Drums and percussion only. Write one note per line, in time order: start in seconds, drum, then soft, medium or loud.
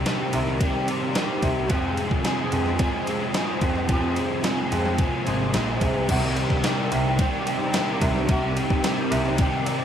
0.06 snare loud
0.06 ride loud
0.33 ride medium
0.47 snare soft
0.61 kick loud
0.61 ride loud
0.88 ride medium
1.15 snare loud
1.15 ride loud
1.42 kick medium
1.42 ride medium
1.70 kick loud
1.70 ride loud
1.97 ride medium
2.11 kick medium
2.25 snare loud
2.25 ride medium
2.52 ride medium
2.66 snare soft
2.79 kick loud
2.79 ride loud
3.07 ride medium
3.34 snare loud
3.34 ride loud
3.61 kick medium
3.61 ride medium
3.76 snare soft
3.89 kick loud
3.89 ride loud
4.16 ride medium
4.44 snare loud
4.44 ride loud
4.72 ride medium
4.86 snare soft
4.98 kick loud
4.98 ride loud
5.27 ride medium
5.54 snare loud
5.54 ride loud
5.81 kick medium
5.81 ride medium
6.09 kick loud
6.09 crash loud
6.09 ride loud
6.37 ride medium
6.50 kick medium
6.64 snare loud
6.64 ride loud
6.92 ride medium
7.19 kick loud
7.19 ride loud
7.47 ride medium
7.74 snare loud
7.74 ride loud
8.01 kick medium
8.01 ride medium
8.16 snare soft
8.29 kick loud
8.29 ride loud
8.57 ride medium
8.70 kick medium
8.84 snare loud
8.84 ride loud
9.12 ride medium
9.25 snare soft
9.38 kick loud
9.38 ride loud
9.66 ride medium